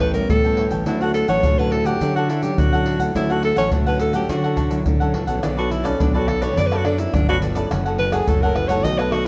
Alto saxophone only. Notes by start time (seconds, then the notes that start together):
0.00 B4
0.14 A#4
0.30 A4
0.87 E4
1.01 F#4
1.14 A4
1.29 C#5
1.58 B4
1.72 A4
1.85 G4
2.16 F#4
2.30 E4
2.43 G4
2.59 F#4
3.16 E4
3.32 F#4
3.44 A4
3.58 C#5
3.87 B4
4.01 A4
4.15 G4
4.30 F#4
5.58 F#4
5.71 E4
5.86 C#4
6.01 D4
6.16 F#4
6.28 A4
6.43 C#5
6.57 D5
6.67 B4
6.77 F#4
6.85 D4
6.99 E4
7.14 D4
7.29 F#4
7.99 B4
8.13 G#4
8.28 A4
8.42 A#4
8.55 B4
8.68 C#5
8.84 D#5
8.98 B4
9.12 F#4